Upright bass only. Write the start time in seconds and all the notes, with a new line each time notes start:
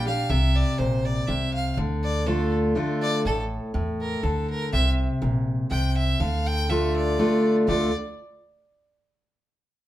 Already playing: A#1
0.30 C2
0.79 A#1
1.28 C2
1.77 D2
3.25 A1
3.74 E2
4.23 D2
4.73 C2
5.22 A#1
5.71 C2
6.20 D2
7.68 D2